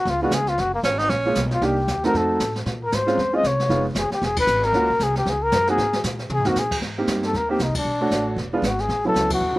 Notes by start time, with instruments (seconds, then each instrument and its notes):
0.00 trumpet F#4
0.05 upright bass C#2, brush sweep, snare
0.10 trumpet F4
0.22 grand piano G#3 B3 D4 F4, trumpet F#4
0.31 upright bass C#2, trumpet G#4, snare, hi-hat pedal
0.47 trumpet F4, snare
0.58 upright bass F#1, trumpet F#4, brush sweep, snare
0.74 trumpet A#3
0.83 upright bass G#1, tenor saxophone C#4, snare, hi-hat pedal
0.99 tenor saxophone D#4, snare
1.09 upright bass A#1, tenor saxophone C#4, brush sweep, snare
1.26 grand piano G#3 A#3 C#4 F4
1.35 upright bass B1, snare, hi-hat pedal
1.51 trumpet F4, snare
1.61 upright bass C2, grand piano A#3 D4 D#4 G4, brush sweep, snare
1.65 trumpet G4
1.88 upright bass D#2, snare, hi-hat pedal
2.03 grand piano A3 C4 D#4 F#4, trumpet A#4, snare
2.14 upright bass F2, trumpet A4, brush sweep, snare
2.40 upright bass A2, snare, hi-hat pedal
2.56 snare
2.66 upright bass A#2, brush sweep, snare
2.84 trumpet A#4
2.92 upright bass G#2, trumpet C5, snare, hi-hat pedal
3.07 grand piano G#3 C4 C#4 F4, snare
3.18 upright bass F2, brush sweep, snare
3.33 grand piano G#3 C4 C#4 F4, trumpet D#5
3.43 upright bass C2, trumpet C#5, snare, hi-hat pedal
3.60 snare
3.69 upright bass F1, grand piano G#3 B3 D#4 F4, brush sweep, snare
3.95 upright bass F#1, trumpet G#4, snare, hi-hat pedal
4.11 trumpet G4, muted upright bass stroke, snare
4.22 upright bass E1, trumpet G#4, brush sweep, snare
4.36 trumpet B4, kick, ride
4.47 upright bass G#1, hi-hat pedal
4.63 trumpet A#4, snare
4.73 upright bass D#2, grand piano A#3 C#4 F4 F#4, brush sweep, snare
4.81 upright bass C#2
4.90 upright bass A#1
5.00 upright bass C2, trumpet G#4, snare, hi-hat pedal
5.16 trumpet G4, snare
5.26 upright bass C#2, brush sweep, snare
5.30 trumpet G#4
5.43 trumpet A#4
5.52 upright bass F#2, snare, hi-hat pedal
5.67 grand piano A#3 C4 D#4 F#4, trumpet G#4, snare
5.78 upright bass G#2, brush sweep, snare
5.93 snare
6.04 upright bass A#2, snare, hi-hat pedal
6.19 snare
6.30 upright bass C3, trumpet G#4, mid tom
6.39 upright bass G#2
6.45 upright bass F#2, grand piano A#3 C4 D#4 F#4, trumpet F#4, snare
6.56 upright bass A#2, trumpet G#4, snare, hi-hat pedal
6.71 kick, crash
6.81 upright bass G#2, brush sweep, snare
6.98 grand piano A#3 C4 D#4 G4
7.07 upright bass G2, snare, hi-hat pedal
7.23 trumpet A4, snare
7.33 upright bass D#2, trumpet A#4, brush sweep, snare
7.49 grand piano A#3 C4 D#4 G4, trumpet G4
7.59 upright bass C2, trumpet D#4, snare, hi-hat pedal
7.68 upright bass G#1
7.75 upright bass G1, trumpet D4, kick, ride
7.85 upright bass B1, brush sweep
8.01 grand piano A3 D4 F#4 C#5
8.11 upright bass A1, snare, hi-hat pedal
8.36 upright bass E1, brush sweep, snare
8.53 grand piano G#3 B3 D4 F4
8.62 upright bass G#1, snare, hi-hat pedal
8.66 trumpet F#4
8.79 trumpet G#4, snare
8.89 upright bass A1, brush sweep, snare
9.05 grand piano F#3 B3 C#4 E4, trumpet A4
9.14 upright bass C#2, snare, hi-hat pedal
9.30 trumpet F#4, kick, ride
9.40 upright bass D#2, brush sweep
9.49 upright bass C#2
9.56 grand piano F#3